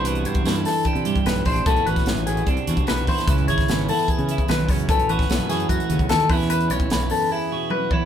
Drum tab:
HH |xxxxxxo-xxxxxxox|xxxxxxxxxxxxxxox|xxxxxxo-xxxxxxox|xxxxxxxxxxxxxxox|
SD |----o-o-----o---|---oo-------o--o|---oo-------o---|---oo-o-----o--o|
T1 |----------------|----------------|----------------|----------------|
BD |---o----o--o--o-|o--o----o--o--o-|o--o----o--o--o-|o--o----o--o--o-|

HH |xxxxxxo---------|
SD |----o-----------|
T1 |------------o---|
BD |---o----------o-|